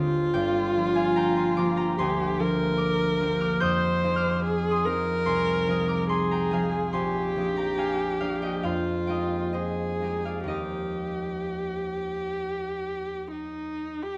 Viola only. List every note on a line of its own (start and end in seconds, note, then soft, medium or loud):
0.00 1.98 F4 medium
1.99 2.42 G4 medium
2.40 3.62 A#4 medium
3.61 4.44 C5 medium
4.45 4.87 G#4 medium
4.86 6.10 A#4 medium
6.11 6.96 G#4 medium
6.95 8.66 G4 medium
8.65 9.56 F4 medium
9.55 10.48 G#4 medium
10.48 13.27 G4 medium
13.31 14.04 D#4 medium
14.03 14.18 G4 medium